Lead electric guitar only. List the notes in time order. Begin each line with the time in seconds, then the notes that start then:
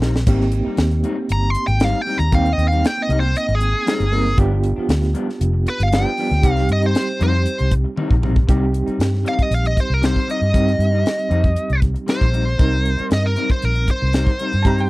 1.32 A#5
1.50 C6
1.67 G5
1.84 F5
2.01 G5
2.18 A#5
2.35 F5
2.53 D#5
2.68 F5
2.86 G5
3.02 D#5
3.20 C5
3.38 D#5
3.55 G#4
5.70 B4
5.83 F5
5.95 G5
6.52 F5
6.73 D#5
6.86 C5
7.24 C5
9.29 F5
9.42 D#5
9.54 F5
9.67 D#5
9.80 C5
9.94 A#4
10.06 C5
10.31 D#5
12.10 C5
13.13 D#5
13.26 A#4
13.52 C5
13.65 A#4
13.91 C5